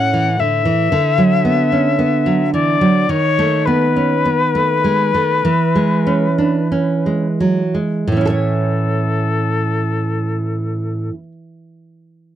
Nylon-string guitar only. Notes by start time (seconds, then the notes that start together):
Already playing: A2 C#4
0.14 E3
0.39 D3
0.65 E3
0.92 D3
1.18 F#3
1.45 B3
1.72 C#4
1.99 B3
2.26 F#3
2.54 E3
2.81 F#3
3.09 D#3
3.39 A3
3.67 B3
3.96 C#4
4.25 B3
4.55 A3
4.84 G#3
5.14 A3
5.45 E3
5.75 G#3
6.07 C#4
6.38 D4
6.72 C#4
7.06 G#3
7.40 F#3
7.75 G#3
8.08 A2
8.12 E3
8.17 C#4
8.21 E4
8.26 A4
8.30 C#5